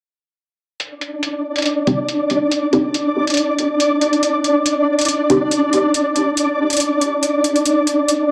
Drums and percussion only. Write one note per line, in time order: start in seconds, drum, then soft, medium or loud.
0.80 closed hi-hat medium
1.01 closed hi-hat medium
1.23 closed hi-hat medium
1.56 closed hi-hat soft
1.58 closed hi-hat medium
1.62 closed hi-hat medium
1.66 closed hi-hat medium
1.87 closed hi-hat medium
2.08 closed hi-hat medium
2.30 closed hi-hat soft
2.51 closed hi-hat medium
2.73 closed hi-hat medium
2.94 closed hi-hat medium
3.27 closed hi-hat soft
3.30 closed hi-hat medium
3.34 closed hi-hat medium
3.37 closed hi-hat medium
3.58 closed hi-hat medium
3.80 closed hi-hat medium
4.01 closed hi-hat medium
4.13 closed hi-hat soft
4.23 closed hi-hat medium
4.44 closed hi-hat medium
4.66 closed hi-hat medium
4.99 closed hi-hat soft
5.01 closed hi-hat medium
5.05 closed hi-hat medium
5.08 closed hi-hat medium
5.30 closed hi-hat medium
5.51 closed hi-hat medium
5.73 closed hi-hat soft
5.94 closed hi-hat medium
6.16 closed hi-hat soft
6.37 closed hi-hat medium
6.70 closed hi-hat soft
6.73 closed hi-hat medium
6.77 closed hi-hat medium
6.80 closed hi-hat medium
7.01 closed hi-hat medium
7.23 closed hi-hat medium
7.44 closed hi-hat soft
7.56 closed hi-hat soft
7.66 closed hi-hat medium
7.87 closed hi-hat soft
8.09 closed hi-hat medium